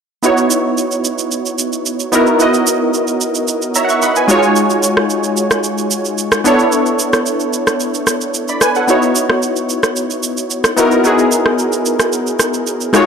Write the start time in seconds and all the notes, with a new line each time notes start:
0.23 B3 D#4 E4 F#4 C#5, shaker
0.37 shaker
0.50 shaker
0.78 shaker
0.91 shaker
1.04 shaker
1.19 shaker
1.31 shaker
1.46 shaker
1.59 shaker
1.73 shaker
1.86 shaker
2.00 shaker
2.12 B3 D#4 E4 F#4 A#4, shaker
2.27 shaker
2.39 B3 D#4 E4 F#4 D#5, shaker
2.54 shaker
2.67 shaker
2.94 shaker
3.08 shaker
3.21 shaker
3.35 shaker
3.48 shaker
3.62 shaker
3.75 C#5 E5 A#5, shaker
3.84 F#5
3.89 E5 C#6, shaker
4.02 D#5 F#5 B5, shaker
4.16 B4 G#5, shaker
4.20 G#5
4.28 G#3 D#4 F4 F#4 C#5, shaker
4.39 G#5
4.43 shaker
4.56 shaker
4.70 shaker
4.83 shaker
4.97 cross-stick
5.10 shaker
5.24 shaker
5.37 shaker
5.51 cross-stick, shaker
5.64 shaker
5.78 shaker
5.91 shaker
6.05 shaker
6.18 shaker
6.32 cross-stick, shaker
6.44 B3 D4 E4 A4 C#5, shaker
6.59 shaker
6.72 shaker
6.86 shaker
6.99 shaker
7.13 cross-stick, shaker
7.26 shaker
7.40 shaker
7.53 shaker
7.67 cross-stick, shaker
7.80 shaker
7.94 shaker
8.07 cross-stick, shaker
8.21 shaker
8.34 shaker
8.48 D5 B5, shaker
8.61 B4 G#5, cross-stick, shaker
8.75 A4 F#5, shaker
8.87 B3 D#4 E4 F#4 C#5, shaker
9.02 shaker
9.15 shaker
9.30 cross-stick
9.42 shaker
9.56 shaker
9.69 shaker
9.83 cross-stick, shaker
9.96 shaker
10.10 shaker
10.23 shaker
10.37 shaker
10.50 shaker
10.64 cross-stick, shaker
10.76 B3 D#4 E4 F#4 A#4, shaker
10.91 shaker
11.04 B3 D#4 E4 F#4 G#4, shaker
11.19 shaker
11.32 shaker
11.46 cross-stick
11.59 shaker
11.72 shaker
11.86 shaker
12.00 cross-stick, shaker
12.13 shaker
12.27 shaker
12.39 cross-stick, shaker
12.54 shaker
12.67 shaker
12.81 shaker
12.93 G#3 D#4 F4 F#4 C#5, cross-stick, shaker